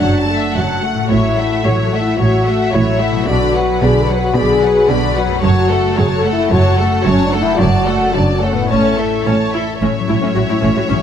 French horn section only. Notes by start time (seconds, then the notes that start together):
Already playing: D4
1.11 E4
1.64 F#4
1.82 A4
2.01 E4
2.18 F#4
2.73 E4
3.28 F#4
3.83 G#4
4.02 B4
4.20 F#4
4.36 G#4
4.90 F#4
5.42 F#4
5.98 G#4
6.15 A4
6.33 E4
6.53 F#4
7.07 C#4
7.24 D4
7.42 E4
7.58 F#4
8.13 D4
8.35 C#4
8.53 B3
8.71 A3
9.81 F#3 C#4